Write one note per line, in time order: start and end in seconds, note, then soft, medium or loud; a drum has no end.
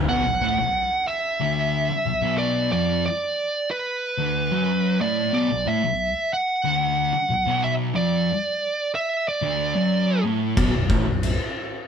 0.09 0.24 B1 loud
0.09 0.25 B2 loud
0.09 1.07 F#5 loud
0.25 0.41 B1 medium
0.42 0.57 A2 medium
0.42 0.58 A3 medium
0.59 0.85 B1 medium
1.08 2.43 E5 loud
1.40 1.88 D2 loud
1.40 1.89 D3 medium
1.90 muted distorted electric guitar stroke medium
2.06 2.20 B1 medium
2.21 2.70 B1 loud
2.21 2.71 B2 loud
2.38 2.71 D5 loud
2.71 3.03 F2 loud
2.71 3.03 F3 loud
2.71 3.05 D5 loud
3.06 3.71 D5 loud
3.71 5.01 B4 medium
4.18 4.50 D2 medium
4.18 4.51 D3 loud
4.51 5.00 F#2 loud
4.51 5.00 F#3 loud
5.01 5.32 A2 loud
5.01 5.32 A3 loud
5.01 5.33 D5 medium
5.32 5.49 B1 loud
5.32 5.49 B2 loud
5.32 5.68 D5 loud
5.50 5.66 B1 medium
5.66 5.82 A2 medium
5.66 5.82 A3 loud
5.66 6.33 E5 loud
5.83 6.09 B1 medium
6.33 7.68 F#5 loud
6.64 7.13 D2 loud
6.64 7.13 D3 loud
7.13 muted distorted electric guitar stroke medium
7.30 7.44 B1 medium
7.46 7.94 B1 loud
7.46 7.94 B2 loud
7.64 7.72 E5 medium
7.94 8.27 F2 loud
7.94 8.27 F3 loud
7.94 8.90 D5 medium
8.95 9.28 E5 medium
9.28 10.22 D5 medium
9.42 9.74 D2 medium
9.42 9.75 D3 medium
9.75 10.23 F#2 loud
9.75 10.24 F#3 loud
10.24 10.56 A2 medium
10.24 10.56 A3 loud
10.57 10.72 B0 loud
10.57 10.72 B1 loud
10.57 10.73 B2 loud
10.57 kick loud
10.57 crash medium
10.73 10.89 B0 medium
10.73 10.89 B1 medium
10.90 11.05 A1 medium
10.90 11.05 A2 medium
10.90 11.06 A3 medium
10.90 kick loud
11.06 11.37 B0 medium
11.06 11.33 B1 medium
11.23 crash medium